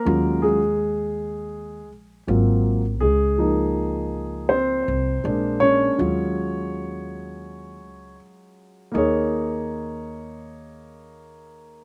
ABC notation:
X:1
M:4/4
L:1/8
Q:"Swing 16ths" 1/4=81
K:Ebdor
V:1 name="Grand piano"
[B,B] [A,A]4 z3 | [A,A]4 [Cc]3 [Dd]- | [Dd]6 z2 | [B,EAd]8 |]
V:2 name="Grand piano"
[G,A,DF] z4 z [G,B,CF] z | z [F,B,E]4- [F,B,E] [A,B,=D]2 | [G,A,DF]8 | z8 |]
V:3 name="Upright bass" clef=bass
E,,4- E,, B,,, A,,,2 | D,,4- D,, C,, B,,,2 | E,,4- E,, D,, z2 | E,,8 |]